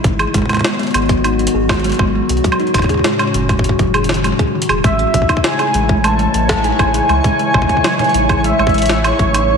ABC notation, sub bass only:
X:1
M:4/4
L:1/16
Q:1/4=100
K:Alyd
V:1 name="Sub bass" clef=bass
G,,, z G,,, z3 G,,,4 G,,,3 G,,, z B,,, | z2 F,,, z3 F,,,3 F,,,4 z2 E,,, | A,,, z A,,, z3 A,,,4 A,,,3 A,,, z C,, | z2 A,,, z3 A,,,3 A,,,4 A,,,3 |]